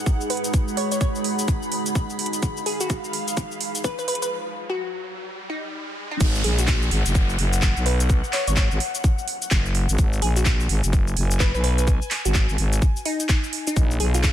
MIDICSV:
0, 0, Header, 1, 8, 480
1, 0, Start_track
1, 0, Tempo, 472441
1, 545, Time_signature, 4, 2, 24, 8
1, 14556, End_track
2, 0, Start_track
2, 0, Title_t, "Analog synth pad"
2, 0, Program_c, 0, 89
2, 0, Note_on_c, 0, 63, 76
2, 0, Note_on_c, 0, 68, 78
2, 0, Note_on_c, 0, 78, 83
2, 0, Note_on_c, 0, 83, 85
2, 2379, Note_on_c, 0, 77, 76
2, 2506, Note_off_c, 0, 78, 0
2, 4384, Note_off_c, 0, 63, 0
2, 4384, Note_off_c, 0, 83, 0
2, 4385, Note_off_c, 0, 68, 0
2, 4385, Note_off_c, 0, 77, 0
2, 6455, Note_on_c, 0, 78, 80
2, 10602, Note_on_c, 0, 80, 82
2, 10765, Note_off_c, 0, 78, 0
2, 13985, Note_off_c, 0, 80, 0
2, 13986, Note_on_c, 0, 65, 78
2, 14556, Note_off_c, 0, 65, 0
2, 14556, End_track
3, 0, Start_track
3, 0, Title_t, "Synth pluck"
3, 0, Program_c, 1, 84
3, 305, Note_on_c, 1, 71, 94
3, 440, Note_off_c, 1, 71, 0
3, 784, Note_on_c, 1, 73, 93
3, 902, Note_off_c, 1, 73, 0
3, 931, Note_on_c, 1, 73, 87
3, 991, Note_off_c, 1, 73, 0
3, 1024, Note_on_c, 1, 73, 78
3, 1118, Note_off_c, 1, 73, 0
3, 2704, Note_on_c, 1, 68, 94
3, 2822, Note_off_c, 1, 68, 0
3, 2850, Note_on_c, 1, 66, 93
3, 2937, Note_off_c, 1, 66, 0
3, 3904, Note_on_c, 1, 71, 88
3, 3998, Note_off_c, 1, 71, 0
3, 4050, Note_on_c, 1, 71, 77
3, 4111, Note_off_c, 1, 71, 0
3, 4144, Note_on_c, 1, 71, 90
3, 4238, Note_off_c, 1, 71, 0
3, 4291, Note_on_c, 1, 71, 75
3, 4351, Note_off_c, 1, 71, 0
3, 4771, Note_on_c, 1, 66, 92
3, 4857, Note_off_c, 1, 66, 0
3, 5584, Note_on_c, 1, 63, 90
3, 5971, Note_off_c, 1, 63, 0
3, 6212, Note_on_c, 1, 63, 91
3, 6305, Note_off_c, 1, 63, 0
3, 6545, Note_on_c, 1, 68, 91
3, 6662, Note_off_c, 1, 68, 0
3, 6691, Note_on_c, 1, 66, 89
3, 6778, Note_off_c, 1, 66, 0
3, 7985, Note_on_c, 1, 71, 95
3, 8120, Note_off_c, 1, 71, 0
3, 8464, Note_on_c, 1, 73, 95
3, 8582, Note_off_c, 1, 73, 0
3, 8611, Note_on_c, 1, 73, 87
3, 8671, Note_off_c, 1, 73, 0
3, 8705, Note_on_c, 1, 73, 75
3, 8799, Note_off_c, 1, 73, 0
3, 10384, Note_on_c, 1, 68, 92
3, 10502, Note_off_c, 1, 68, 0
3, 10531, Note_on_c, 1, 66, 92
3, 10617, Note_off_c, 1, 66, 0
3, 11584, Note_on_c, 1, 71, 88
3, 11678, Note_off_c, 1, 71, 0
3, 11730, Note_on_c, 1, 71, 75
3, 11791, Note_off_c, 1, 71, 0
3, 11824, Note_on_c, 1, 71, 93
3, 11918, Note_off_c, 1, 71, 0
3, 11971, Note_on_c, 1, 71, 72
3, 12031, Note_off_c, 1, 71, 0
3, 12450, Note_on_c, 1, 66, 90
3, 12537, Note_off_c, 1, 66, 0
3, 13264, Note_on_c, 1, 63, 91
3, 13651, Note_off_c, 1, 63, 0
3, 13892, Note_on_c, 1, 63, 88
3, 14044, Note_off_c, 1, 63, 0
3, 14224, Note_on_c, 1, 68, 96
3, 14342, Note_off_c, 1, 68, 0
3, 14371, Note_on_c, 1, 65, 92
3, 14457, Note_off_c, 1, 65, 0
3, 14556, End_track
4, 0, Start_track
4, 0, Title_t, "Ambient pad"
4, 0, Program_c, 2, 92
4, 0, Note_on_c, 2, 56, 85
4, 0, Note_on_c, 2, 63, 76
4, 0, Note_on_c, 2, 66, 75
4, 0, Note_on_c, 2, 71, 99
4, 4344, Note_off_c, 2, 56, 0
4, 4345, Note_off_c, 2, 63, 0
4, 4345, Note_off_c, 2, 66, 0
4, 4345, Note_off_c, 2, 71, 0
4, 14556, End_track
5, 0, Start_track
5, 0, Title_t, "FM bass"
5, 0, Program_c, 3, 39
5, 6305, Note_on_c, 3, 32, 100
5, 6530, Note_off_c, 3, 32, 0
5, 6545, Note_on_c, 3, 34, 95
5, 7010, Note_off_c, 3, 34, 0
5, 7025, Note_on_c, 3, 32, 97
5, 7148, Note_off_c, 3, 32, 0
5, 7171, Note_on_c, 3, 30, 94
5, 7490, Note_off_c, 3, 30, 0
5, 7504, Note_on_c, 3, 30, 102
5, 7868, Note_off_c, 3, 30, 0
5, 7892, Note_on_c, 3, 35, 96
5, 8348, Note_off_c, 3, 35, 0
5, 8610, Note_on_c, 3, 32, 95
5, 8827, Note_off_c, 3, 32, 0
5, 8851, Note_on_c, 3, 32, 98
5, 8930, Note_off_c, 3, 32, 0
5, 9665, Note_on_c, 3, 30, 98
5, 10028, Note_off_c, 3, 30, 0
5, 10051, Note_on_c, 3, 32, 98
5, 10130, Note_off_c, 3, 32, 0
5, 10145, Note_on_c, 3, 32, 103
5, 10370, Note_off_c, 3, 32, 0
5, 10384, Note_on_c, 3, 34, 97
5, 10850, Note_off_c, 3, 34, 0
5, 10865, Note_on_c, 3, 32, 96
5, 10988, Note_off_c, 3, 32, 0
5, 11011, Note_on_c, 3, 30, 97
5, 11330, Note_off_c, 3, 30, 0
5, 11346, Note_on_c, 3, 30, 98
5, 11708, Note_off_c, 3, 30, 0
5, 11731, Note_on_c, 3, 35, 97
5, 12188, Note_off_c, 3, 35, 0
5, 12451, Note_on_c, 3, 32, 100
5, 12668, Note_off_c, 3, 32, 0
5, 12691, Note_on_c, 3, 32, 99
5, 12770, Note_off_c, 3, 32, 0
5, 12785, Note_on_c, 3, 32, 94
5, 13010, Note_off_c, 3, 32, 0
5, 13985, Note_on_c, 3, 34, 102
5, 14210, Note_off_c, 3, 34, 0
5, 14225, Note_on_c, 3, 35, 95
5, 14556, Note_off_c, 3, 35, 0
5, 14556, End_track
6, 0, Start_track
6, 0, Title_t, "Downlifter"
6, 0, Program_c, 4, 103
6, 6305, Note_on_c, 4, 60, 80
6, 10145, Note_off_c, 4, 60, 0
6, 14556, End_track
7, 0, Start_track
7, 0, Title_t, "Riser"
7, 0, Program_c, 5, 103
7, 0, Note_on_c, 5, 60, 79
7, 6304, Note_off_c, 5, 60, 0
7, 14556, End_track
8, 0, Start_track
8, 0, Title_t, "Drums"
8, 64, Note_on_c, 9, 42, 38
8, 65, Note_on_c, 9, 36, 97
8, 65, Note_on_c, 9, 69, 55
8, 166, Note_off_c, 9, 36, 0
8, 166, Note_off_c, 9, 42, 0
8, 167, Note_off_c, 9, 69, 0
8, 212, Note_on_c, 9, 69, 33
8, 304, Note_on_c, 9, 46, 113
8, 314, Note_off_c, 9, 69, 0
8, 377, Note_on_c, 9, 42, 69
8, 406, Note_off_c, 9, 46, 0
8, 450, Note_off_c, 9, 42, 0
8, 450, Note_on_c, 9, 42, 55
8, 452, Note_on_c, 9, 69, 67
8, 544, Note_off_c, 9, 42, 0
8, 544, Note_on_c, 9, 42, 71
8, 545, Note_off_c, 9, 69, 0
8, 545, Note_on_c, 9, 36, 127
8, 545, Note_on_c, 9, 69, 56
8, 646, Note_off_c, 9, 36, 0
8, 646, Note_off_c, 9, 42, 0
8, 647, Note_off_c, 9, 69, 0
8, 692, Note_on_c, 9, 69, 33
8, 784, Note_on_c, 9, 46, 110
8, 793, Note_off_c, 9, 69, 0
8, 885, Note_off_c, 9, 46, 0
8, 931, Note_on_c, 9, 42, 51
8, 932, Note_on_c, 9, 69, 65
8, 1024, Note_off_c, 9, 42, 0
8, 1024, Note_on_c, 9, 42, 63
8, 1025, Note_on_c, 9, 36, 111
8, 1026, Note_off_c, 9, 69, 0
8, 1026, Note_on_c, 9, 69, 52
8, 1126, Note_off_c, 9, 36, 0
8, 1126, Note_off_c, 9, 42, 0
8, 1127, Note_off_c, 9, 69, 0
8, 1172, Note_on_c, 9, 69, 31
8, 1264, Note_on_c, 9, 46, 110
8, 1274, Note_off_c, 9, 69, 0
8, 1366, Note_off_c, 9, 46, 0
8, 1410, Note_on_c, 9, 42, 53
8, 1412, Note_on_c, 9, 69, 64
8, 1504, Note_off_c, 9, 42, 0
8, 1504, Note_on_c, 9, 42, 66
8, 1505, Note_on_c, 9, 36, 125
8, 1506, Note_off_c, 9, 69, 0
8, 1506, Note_on_c, 9, 69, 51
8, 1606, Note_off_c, 9, 36, 0
8, 1606, Note_off_c, 9, 42, 0
8, 1607, Note_off_c, 9, 69, 0
8, 1652, Note_on_c, 9, 69, 30
8, 1744, Note_on_c, 9, 46, 110
8, 1754, Note_off_c, 9, 69, 0
8, 1845, Note_off_c, 9, 46, 0
8, 1890, Note_on_c, 9, 42, 53
8, 1892, Note_on_c, 9, 69, 65
8, 1984, Note_off_c, 9, 42, 0
8, 1984, Note_on_c, 9, 42, 36
8, 1985, Note_off_c, 9, 69, 0
8, 1985, Note_on_c, 9, 36, 105
8, 1985, Note_on_c, 9, 69, 55
8, 2085, Note_off_c, 9, 42, 0
8, 2086, Note_off_c, 9, 36, 0
8, 2087, Note_off_c, 9, 69, 0
8, 2132, Note_on_c, 9, 69, 33
8, 2224, Note_on_c, 9, 46, 115
8, 2234, Note_off_c, 9, 69, 0
8, 2297, Note_on_c, 9, 42, 69
8, 2325, Note_off_c, 9, 46, 0
8, 2370, Note_off_c, 9, 42, 0
8, 2370, Note_on_c, 9, 42, 53
8, 2372, Note_on_c, 9, 69, 64
8, 2463, Note_off_c, 9, 42, 0
8, 2463, Note_on_c, 9, 42, 66
8, 2465, Note_off_c, 9, 69, 0
8, 2465, Note_on_c, 9, 36, 107
8, 2465, Note_on_c, 9, 69, 55
8, 2565, Note_off_c, 9, 42, 0
8, 2566, Note_off_c, 9, 36, 0
8, 2567, Note_off_c, 9, 69, 0
8, 2612, Note_on_c, 9, 69, 33
8, 2704, Note_on_c, 9, 46, 118
8, 2713, Note_off_c, 9, 69, 0
8, 2805, Note_off_c, 9, 46, 0
8, 2850, Note_on_c, 9, 42, 52
8, 2852, Note_on_c, 9, 69, 64
8, 2944, Note_off_c, 9, 42, 0
8, 2944, Note_on_c, 9, 42, 65
8, 2945, Note_off_c, 9, 69, 0
8, 2945, Note_on_c, 9, 36, 110
8, 2945, Note_on_c, 9, 69, 52
8, 3046, Note_off_c, 9, 36, 0
8, 3046, Note_off_c, 9, 42, 0
8, 3047, Note_off_c, 9, 69, 0
8, 3092, Note_on_c, 9, 69, 31
8, 3184, Note_on_c, 9, 46, 109
8, 3194, Note_off_c, 9, 69, 0
8, 3285, Note_off_c, 9, 46, 0
8, 3330, Note_on_c, 9, 42, 50
8, 3332, Note_on_c, 9, 69, 67
8, 3424, Note_off_c, 9, 42, 0
8, 3424, Note_on_c, 9, 42, 65
8, 3425, Note_off_c, 9, 69, 0
8, 3425, Note_on_c, 9, 36, 105
8, 3425, Note_on_c, 9, 69, 55
8, 3526, Note_off_c, 9, 36, 0
8, 3526, Note_off_c, 9, 42, 0
8, 3527, Note_off_c, 9, 69, 0
8, 3572, Note_on_c, 9, 69, 31
8, 3663, Note_on_c, 9, 46, 110
8, 3674, Note_off_c, 9, 69, 0
8, 3765, Note_off_c, 9, 46, 0
8, 3810, Note_on_c, 9, 42, 54
8, 3812, Note_on_c, 9, 69, 67
8, 3904, Note_off_c, 9, 42, 0
8, 3904, Note_on_c, 9, 42, 35
8, 3905, Note_on_c, 9, 36, 98
8, 3906, Note_off_c, 9, 69, 0
8, 3906, Note_on_c, 9, 69, 55
8, 4006, Note_off_c, 9, 36, 0
8, 4006, Note_off_c, 9, 42, 0
8, 4007, Note_off_c, 9, 69, 0
8, 4052, Note_on_c, 9, 69, 31
8, 4144, Note_on_c, 9, 46, 114
8, 4154, Note_off_c, 9, 69, 0
8, 4218, Note_on_c, 9, 42, 68
8, 4246, Note_off_c, 9, 46, 0
8, 4291, Note_off_c, 9, 42, 0
8, 4291, Note_on_c, 9, 42, 54
8, 4292, Note_on_c, 9, 69, 63
8, 4392, Note_off_c, 9, 42, 0
8, 4394, Note_off_c, 9, 69, 0
8, 6305, Note_on_c, 9, 36, 127
8, 6305, Note_on_c, 9, 42, 57
8, 6305, Note_on_c, 9, 49, 111
8, 6306, Note_on_c, 9, 69, 57
8, 6406, Note_off_c, 9, 42, 0
8, 6406, Note_off_c, 9, 49, 0
8, 6407, Note_off_c, 9, 36, 0
8, 6408, Note_off_c, 9, 69, 0
8, 6452, Note_on_c, 9, 69, 36
8, 6544, Note_on_c, 9, 46, 110
8, 6554, Note_off_c, 9, 69, 0
8, 6646, Note_off_c, 9, 46, 0
8, 6691, Note_on_c, 9, 42, 72
8, 6692, Note_on_c, 9, 69, 72
8, 6782, Note_on_c, 9, 39, 126
8, 6785, Note_off_c, 9, 42, 0
8, 6785, Note_on_c, 9, 36, 112
8, 6785, Note_on_c, 9, 42, 56
8, 6786, Note_off_c, 9, 69, 0
8, 6786, Note_on_c, 9, 69, 57
8, 6884, Note_off_c, 9, 39, 0
8, 6886, Note_off_c, 9, 42, 0
8, 6887, Note_off_c, 9, 36, 0
8, 6888, Note_off_c, 9, 69, 0
8, 6932, Note_on_c, 9, 69, 32
8, 7024, Note_on_c, 9, 46, 107
8, 7034, Note_off_c, 9, 69, 0
8, 7126, Note_off_c, 9, 46, 0
8, 7171, Note_on_c, 9, 42, 70
8, 7172, Note_on_c, 9, 69, 67
8, 7264, Note_off_c, 9, 42, 0
8, 7264, Note_on_c, 9, 42, 53
8, 7265, Note_on_c, 9, 36, 124
8, 7266, Note_off_c, 9, 69, 0
8, 7266, Note_on_c, 9, 69, 56
8, 7366, Note_off_c, 9, 42, 0
8, 7367, Note_off_c, 9, 36, 0
8, 7367, Note_off_c, 9, 69, 0
8, 7412, Note_on_c, 9, 69, 32
8, 7504, Note_on_c, 9, 46, 108
8, 7514, Note_off_c, 9, 69, 0
8, 7606, Note_off_c, 9, 46, 0
8, 7651, Note_on_c, 9, 42, 72
8, 7652, Note_on_c, 9, 69, 69
8, 7742, Note_on_c, 9, 39, 122
8, 7744, Note_off_c, 9, 42, 0
8, 7744, Note_on_c, 9, 42, 54
8, 7745, Note_on_c, 9, 36, 99
8, 7746, Note_off_c, 9, 69, 0
8, 7746, Note_on_c, 9, 69, 57
8, 7844, Note_off_c, 9, 39, 0
8, 7846, Note_off_c, 9, 36, 0
8, 7846, Note_off_c, 9, 42, 0
8, 7847, Note_off_c, 9, 69, 0
8, 7892, Note_on_c, 9, 69, 33
8, 7984, Note_on_c, 9, 46, 110
8, 7994, Note_off_c, 9, 69, 0
8, 8086, Note_off_c, 9, 46, 0
8, 8131, Note_on_c, 9, 42, 67
8, 8132, Note_on_c, 9, 69, 69
8, 8224, Note_off_c, 9, 42, 0
8, 8224, Note_on_c, 9, 42, 54
8, 8225, Note_on_c, 9, 36, 127
8, 8226, Note_off_c, 9, 69, 0
8, 8226, Note_on_c, 9, 69, 58
8, 8326, Note_off_c, 9, 42, 0
8, 8327, Note_off_c, 9, 36, 0
8, 8327, Note_off_c, 9, 69, 0
8, 8372, Note_on_c, 9, 69, 33
8, 8462, Note_on_c, 9, 39, 66
8, 8465, Note_on_c, 9, 46, 116
8, 8474, Note_off_c, 9, 69, 0
8, 8564, Note_off_c, 9, 39, 0
8, 8566, Note_off_c, 9, 46, 0
8, 8611, Note_on_c, 9, 42, 67
8, 8613, Note_on_c, 9, 69, 67
8, 8703, Note_on_c, 9, 39, 127
8, 8705, Note_off_c, 9, 42, 0
8, 8705, Note_on_c, 9, 36, 110
8, 8705, Note_on_c, 9, 42, 55
8, 8706, Note_off_c, 9, 69, 0
8, 8706, Note_on_c, 9, 69, 53
8, 8804, Note_off_c, 9, 39, 0
8, 8806, Note_off_c, 9, 36, 0
8, 8806, Note_off_c, 9, 42, 0
8, 8808, Note_off_c, 9, 69, 0
8, 8853, Note_on_c, 9, 69, 31
8, 8944, Note_on_c, 9, 46, 108
8, 8954, Note_off_c, 9, 69, 0
8, 9046, Note_off_c, 9, 46, 0
8, 9091, Note_on_c, 9, 42, 66
8, 9092, Note_on_c, 9, 69, 65
8, 9184, Note_off_c, 9, 42, 0
8, 9184, Note_on_c, 9, 42, 55
8, 9185, Note_on_c, 9, 36, 127
8, 9186, Note_off_c, 9, 69, 0
8, 9186, Note_on_c, 9, 69, 53
8, 9286, Note_off_c, 9, 36, 0
8, 9286, Note_off_c, 9, 42, 0
8, 9287, Note_off_c, 9, 69, 0
8, 9332, Note_on_c, 9, 69, 33
8, 9424, Note_on_c, 9, 46, 113
8, 9434, Note_off_c, 9, 69, 0
8, 9526, Note_off_c, 9, 46, 0
8, 9571, Note_on_c, 9, 42, 71
8, 9572, Note_on_c, 9, 69, 67
8, 9662, Note_on_c, 9, 39, 127
8, 9664, Note_off_c, 9, 42, 0
8, 9664, Note_on_c, 9, 42, 55
8, 9665, Note_off_c, 9, 69, 0
8, 9665, Note_on_c, 9, 36, 110
8, 9665, Note_on_c, 9, 69, 54
8, 9763, Note_off_c, 9, 39, 0
8, 9765, Note_off_c, 9, 42, 0
8, 9766, Note_off_c, 9, 36, 0
8, 9767, Note_off_c, 9, 69, 0
8, 9812, Note_on_c, 9, 69, 34
8, 9904, Note_on_c, 9, 46, 110
8, 9914, Note_off_c, 9, 69, 0
8, 10005, Note_off_c, 9, 46, 0
8, 10050, Note_on_c, 9, 42, 65
8, 10052, Note_on_c, 9, 69, 66
8, 10144, Note_off_c, 9, 42, 0
8, 10144, Note_on_c, 9, 42, 57
8, 10145, Note_off_c, 9, 69, 0
8, 10145, Note_on_c, 9, 36, 127
8, 10145, Note_on_c, 9, 69, 59
8, 10245, Note_off_c, 9, 42, 0
8, 10246, Note_off_c, 9, 36, 0
8, 10247, Note_off_c, 9, 69, 0
8, 10291, Note_on_c, 9, 69, 33
8, 10384, Note_on_c, 9, 46, 116
8, 10393, Note_off_c, 9, 69, 0
8, 10485, Note_off_c, 9, 46, 0
8, 10530, Note_on_c, 9, 42, 65
8, 10531, Note_on_c, 9, 69, 64
8, 10622, Note_on_c, 9, 39, 123
8, 10624, Note_off_c, 9, 42, 0
8, 10624, Note_on_c, 9, 42, 52
8, 10625, Note_off_c, 9, 69, 0
8, 10625, Note_on_c, 9, 36, 117
8, 10625, Note_on_c, 9, 69, 55
8, 10723, Note_off_c, 9, 39, 0
8, 10725, Note_off_c, 9, 42, 0
8, 10727, Note_off_c, 9, 36, 0
8, 10727, Note_off_c, 9, 69, 0
8, 10772, Note_on_c, 9, 69, 33
8, 10864, Note_on_c, 9, 46, 110
8, 10873, Note_off_c, 9, 69, 0
8, 10966, Note_off_c, 9, 46, 0
8, 11011, Note_on_c, 9, 42, 63
8, 11012, Note_on_c, 9, 69, 66
8, 11105, Note_off_c, 9, 42, 0
8, 11105, Note_on_c, 9, 36, 127
8, 11105, Note_on_c, 9, 42, 55
8, 11106, Note_off_c, 9, 69, 0
8, 11106, Note_on_c, 9, 69, 53
8, 11206, Note_off_c, 9, 36, 0
8, 11206, Note_off_c, 9, 42, 0
8, 11208, Note_off_c, 9, 69, 0
8, 11253, Note_on_c, 9, 69, 32
8, 11344, Note_on_c, 9, 46, 112
8, 11354, Note_off_c, 9, 69, 0
8, 11446, Note_off_c, 9, 46, 0
8, 11491, Note_on_c, 9, 42, 66
8, 11492, Note_on_c, 9, 69, 64
8, 11582, Note_on_c, 9, 39, 119
8, 11584, Note_off_c, 9, 42, 0
8, 11584, Note_on_c, 9, 42, 52
8, 11585, Note_on_c, 9, 36, 111
8, 11586, Note_off_c, 9, 69, 0
8, 11586, Note_on_c, 9, 69, 52
8, 11684, Note_off_c, 9, 39, 0
8, 11686, Note_off_c, 9, 36, 0
8, 11686, Note_off_c, 9, 42, 0
8, 11688, Note_off_c, 9, 69, 0
8, 11732, Note_on_c, 9, 69, 33
8, 11824, Note_on_c, 9, 46, 119
8, 11834, Note_off_c, 9, 69, 0
8, 11926, Note_off_c, 9, 46, 0
8, 11971, Note_on_c, 9, 42, 64
8, 11972, Note_on_c, 9, 69, 63
8, 12064, Note_off_c, 9, 42, 0
8, 12064, Note_on_c, 9, 42, 53
8, 12065, Note_on_c, 9, 36, 127
8, 12066, Note_off_c, 9, 69, 0
8, 12066, Note_on_c, 9, 69, 57
8, 12166, Note_off_c, 9, 36, 0
8, 12166, Note_off_c, 9, 42, 0
8, 12167, Note_off_c, 9, 69, 0
8, 12212, Note_on_c, 9, 69, 35
8, 12302, Note_on_c, 9, 39, 66
8, 12304, Note_on_c, 9, 46, 120
8, 12314, Note_off_c, 9, 69, 0
8, 12404, Note_off_c, 9, 39, 0
8, 12406, Note_off_c, 9, 46, 0
8, 12450, Note_on_c, 9, 42, 62
8, 12452, Note_on_c, 9, 69, 69
8, 12542, Note_on_c, 9, 39, 119
8, 12544, Note_off_c, 9, 42, 0
8, 12544, Note_on_c, 9, 42, 52
8, 12545, Note_on_c, 9, 36, 117
8, 12546, Note_off_c, 9, 69, 0
8, 12546, Note_on_c, 9, 69, 58
8, 12644, Note_off_c, 9, 39, 0
8, 12646, Note_off_c, 9, 36, 0
8, 12646, Note_off_c, 9, 42, 0
8, 12647, Note_off_c, 9, 69, 0
8, 12692, Note_on_c, 9, 69, 34
8, 12784, Note_on_c, 9, 46, 111
8, 12793, Note_off_c, 9, 69, 0
8, 12886, Note_off_c, 9, 46, 0
8, 12930, Note_on_c, 9, 42, 62
8, 12932, Note_on_c, 9, 69, 65
8, 13024, Note_off_c, 9, 42, 0
8, 13024, Note_on_c, 9, 42, 49
8, 13025, Note_on_c, 9, 36, 123
8, 13026, Note_off_c, 9, 69, 0
8, 13026, Note_on_c, 9, 69, 55
8, 13126, Note_off_c, 9, 36, 0
8, 13126, Note_off_c, 9, 42, 0
8, 13127, Note_off_c, 9, 69, 0
8, 13172, Note_on_c, 9, 69, 33
8, 13264, Note_on_c, 9, 46, 113
8, 13274, Note_off_c, 9, 69, 0
8, 13365, Note_off_c, 9, 46, 0
8, 13410, Note_on_c, 9, 42, 66
8, 13412, Note_on_c, 9, 69, 71
8, 13502, Note_on_c, 9, 39, 116
8, 13504, Note_off_c, 9, 42, 0
8, 13504, Note_on_c, 9, 42, 51
8, 13505, Note_on_c, 9, 36, 112
8, 13506, Note_off_c, 9, 69, 0
8, 13506, Note_on_c, 9, 69, 56
8, 13604, Note_off_c, 9, 39, 0
8, 13606, Note_off_c, 9, 36, 0
8, 13606, Note_off_c, 9, 42, 0
8, 13607, Note_off_c, 9, 69, 0
8, 13652, Note_on_c, 9, 69, 33
8, 13744, Note_on_c, 9, 46, 114
8, 13754, Note_off_c, 9, 69, 0
8, 13846, Note_off_c, 9, 46, 0
8, 13891, Note_on_c, 9, 42, 64
8, 13892, Note_on_c, 9, 69, 67
8, 13984, Note_off_c, 9, 42, 0
8, 13984, Note_on_c, 9, 42, 52
8, 13985, Note_on_c, 9, 36, 121
8, 13986, Note_off_c, 9, 69, 0
8, 13986, Note_on_c, 9, 69, 58
8, 14086, Note_off_c, 9, 42, 0
8, 14087, Note_off_c, 9, 36, 0
8, 14087, Note_off_c, 9, 69, 0
8, 14132, Note_on_c, 9, 69, 36
8, 14224, Note_on_c, 9, 46, 108
8, 14234, Note_off_c, 9, 69, 0
8, 14325, Note_off_c, 9, 46, 0
8, 14370, Note_on_c, 9, 42, 65
8, 14372, Note_on_c, 9, 69, 68
8, 14462, Note_on_c, 9, 39, 114
8, 14464, Note_off_c, 9, 42, 0
8, 14464, Note_on_c, 9, 42, 50
8, 14465, Note_on_c, 9, 36, 112
8, 14466, Note_off_c, 9, 69, 0
8, 14466, Note_on_c, 9, 69, 59
8, 14556, Note_off_c, 9, 36, 0
8, 14556, Note_off_c, 9, 39, 0
8, 14556, Note_off_c, 9, 42, 0
8, 14556, Note_off_c, 9, 69, 0
8, 14556, End_track
0, 0, End_of_file